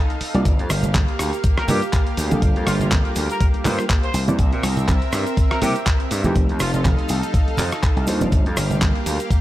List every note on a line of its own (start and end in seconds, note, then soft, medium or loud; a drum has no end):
0.00 0.43 D#4 medium
0.00 0.43 A4 medium
0.00 4.10 F5 medium
0.10 closed hi-hat soft
0.21 muted slap bass stroke soft
0.21 open hi-hat loud
0.34 0.43 C2 medium
0.34 0.52 G3 medium
0.34 0.52 A#3 medium
0.34 0.52 D4 medium
0.34 0.52 F4 medium
0.34 0.52 D5 medium
0.34 closed hi-hat soft
0.45 0.57 G1 medium
0.45 4.11 A#3 medium
0.45 4.11 G4 medium
0.45 kick loud
0.45 closed hi-hat medium
0.45 maracas soft
0.59 0.68 F2 medium
0.59 closed hi-hat soft
0.70 1.05 G1 medium
0.70 cross-stick medium
0.70 open hi-hat loud
0.70 maracas medium
0.83 closed hi-hat soft
0.83 low conga medium
0.83 maracas medium
0.94 kick loud
0.94 clap loud
0.94 closed hi-hat medium
0.94 high conga medium
0.94 maracas soft
1.08 closed hi-hat soft
1.19 1.31 D2 medium
1.19 cross-stick medium
1.19 open hi-hat loud
1.19 maracas medium
1.33 closed hi-hat soft
1.33 maracas soft
1.44 kick loud
1.44 closed hi-hat medium
1.44 maracas soft
1.58 1.66 A#4 medium
1.58 cross-stick medium
1.58 closed hi-hat soft
1.68 1.80 G2 medium
1.68 1.81 G3 medium
1.68 1.81 A#3 medium
1.68 1.81 D4 medium
1.68 1.81 F4 medium
1.68 1.84 G4 medium
1.68 1.81 A#4 medium
1.68 open hi-hat loud
1.68 high conga medium
1.68 low conga loud
1.68 maracas medium
1.82 closed hi-hat soft
1.82 maracas medium
1.93 kick loud
1.93 clap loud
1.93 closed hi-hat medium
1.93 maracas soft
2.07 closed hi-hat soft
2.17 2.29 D2 medium
2.17 open hi-hat loud
2.17 maracas medium
2.30 2.40 A#1 medium
2.30 3.62 G3 medium
2.30 3.62 A#3 medium
2.30 3.62 D4 medium
2.30 3.63 F4 medium
2.30 3.63 A4 loud
2.30 closed hi-hat soft
2.30 high conga medium
2.30 low conga medium
2.30 maracas medium
2.42 2.54 G1 loud
2.42 kick loud
2.42 closed hi-hat medium
2.42 maracas soft
2.56 2.65 F2 loud
2.56 closed hi-hat soft
2.67 3.01 G1 loud
2.67 2.75 F4 medium
2.67 cross-stick medium
2.67 open hi-hat loud
2.67 maracas medium
2.80 2.87 F4 medium
2.80 closed hi-hat soft
2.80 low conga medium
2.80 maracas soft
2.91 kick loud
2.91 clap loud
2.91 closed hi-hat medium
2.91 high conga loud
2.91 maracas soft
3.05 closed hi-hat soft
3.16 3.27 D2 medium
3.16 open hi-hat loud
3.16 maracas medium
3.30 3.44 A#4 medium
3.30 closed hi-hat soft
3.30 maracas soft
3.40 kick loud
3.40 closed hi-hat medium
3.40 maracas soft
3.54 muted slap bass stroke soft
3.54 closed hi-hat soft
3.65 3.76 G2 medium
3.65 3.84 G3 medium
3.65 3.84 A#3 medium
3.65 3.84 D4 medium
3.65 3.84 F4 medium
3.65 3.84 A#4 medium
3.65 3.81 C5 medium
3.65 clap medium
3.65 open hi-hat loud
3.65 high conga medium
3.65 low conga medium
3.65 maracas medium
3.79 cross-stick medium
3.79 closed hi-hat soft
3.79 maracas medium
3.89 kick loud
3.89 clap loud
3.89 closed hi-hat medium
3.89 maracas soft
4.03 4.20 C5 medium
4.03 closed hi-hat soft
4.14 4.25 C2 medium
4.14 6.33 C4 medium
4.14 6.33 A#4 medium
4.14 6.33 E5 medium
4.14 open hi-hat loud
4.14 maracas medium
4.27 4.37 E2 medium
4.27 4.45 G3 medium
4.27 4.45 A#3 medium
4.27 4.45 C4 medium
4.27 4.46 E4 medium
4.27 4.46 D5 loud
4.27 closed hi-hat soft
4.27 high conga medium
4.27 low conga medium
4.27 maracas medium
4.39 4.50 C2 loud
4.39 kick loud
4.39 closed hi-hat medium
4.39 maracas soft
4.52 4.61 A#2 loud
4.52 closed hi-hat soft
4.63 4.98 C2 loud
4.63 cross-stick medium
4.63 open hi-hat loud
4.63 maracas medium
4.77 closed hi-hat soft
4.77 low conga medium
4.77 maracas soft
4.88 kick loud
4.88 clap loud
4.88 closed hi-hat medium
4.88 high conga medium
4.88 maracas soft
5.02 closed hi-hat soft
5.12 5.24 G2 medium
5.12 cross-stick medium
5.12 open hi-hat loud
5.12 maracas medium
5.26 closed hi-hat soft
5.26 maracas soft
5.37 kick loud
5.37 closed hi-hat medium
5.37 maracas soft
5.51 5.59 A#4 medium
5.51 cross-stick medium
5.51 closed hi-hat soft
5.61 5.73 C3 medium
5.61 5.74 G3 medium
5.61 5.74 A#3 medium
5.61 5.75 C4 medium
5.61 5.75 E4 medium
5.61 5.78 G4 medium
5.61 5.75 A#4 medium
5.61 open hi-hat loud
5.61 high conga medium
5.61 low conga medium
5.61 maracas medium
5.75 closed hi-hat soft
5.75 maracas soft
5.86 kick loud
5.86 clap loud
5.86 closed hi-hat medium
5.86 maracas soft
6.00 closed hi-hat soft
6.11 6.22 G2 medium
6.11 open hi-hat loud
6.11 maracas medium
6.23 6.34 E2 medium
6.23 7.55 F3 medium
6.23 7.55 A3 medium
6.23 7.56 C4 medium
6.23 7.56 D#4 medium
6.23 7.56 G4 loud
6.23 closed hi-hat soft
6.23 high conga medium
6.23 low conga medium
6.23 maracas soft
6.35 6.47 F1 loud
6.35 8.30 D#4 medium
6.35 8.30 A4 medium
6.35 8.30 F5 medium
6.35 kick loud
6.35 closed hi-hat medium
6.35 maracas soft
6.49 6.58 D#2 medium
6.49 closed hi-hat soft
6.60 6.95 F1 medium
6.60 6.69 F4 medium
6.60 cross-stick medium
6.60 open hi-hat loud
6.60 maracas medium
6.74 6.81 F4 medium
6.74 closed hi-hat soft
6.74 low conga medium
6.74 maracas soft
6.85 kick loud
6.85 clap loud
6.85 closed hi-hat medium
6.85 high conga loud
6.85 maracas soft
6.99 closed hi-hat soft
7.09 7.21 C2 medium
7.09 open hi-hat loud
7.09 maracas medium
7.23 closed hi-hat soft
7.23 maracas soft
7.34 kick loud
7.34 closed hi-hat medium
7.34 maracas soft
7.48 muted slap bass stroke soft
7.48 closed hi-hat soft
7.57 7.70 F2 medium
7.57 clap medium
7.57 open hi-hat loud
7.57 high conga medium
7.57 low conga medium
7.57 maracas medium
7.72 cross-stick medium
7.72 closed hi-hat soft
7.72 maracas soft
7.83 kick loud
7.83 clap loud
7.83 closed hi-hat medium
7.83 maracas soft
7.97 8.06 C2 medium
7.97 closed hi-hat soft
8.07 8.19 D#2 medium
8.07 9.41 G3 medium
8.07 9.41 A#3 medium
8.07 9.41 D4 medium
8.07 9.41 F4 medium
8.07 9.41 C5 medium
8.07 open hi-hat loud
8.07 maracas medium
8.21 8.30 F1 medium
8.21 closed hi-hat soft
8.21 high conga medium
8.21 low conga medium
8.21 maracas medium
8.32 8.44 G1 medium
8.32 9.41 A#3 medium
8.32 9.41 G4 medium
8.32 9.41 F5 medium
8.32 kick loud
8.32 closed hi-hat medium
8.32 maracas soft
8.46 8.55 F2 medium
8.46 closed hi-hat soft
8.57 8.91 G1 medium
8.57 cross-stick medium
8.57 open hi-hat loud
8.57 maracas medium
8.71 closed hi-hat soft
8.71 low conga medium
8.71 maracas soft
8.81 kick loud
8.81 clap loud
8.81 closed hi-hat medium
8.81 high conga medium
8.81 maracas soft
8.95 closed hi-hat soft
9.06 9.17 D2 medium
9.06 open hi-hat loud
9.06 maracas medium
9.20 closed hi-hat soft
9.20 maracas medium
9.30 kick loud
9.30 closed hi-hat medium
9.30 maracas soft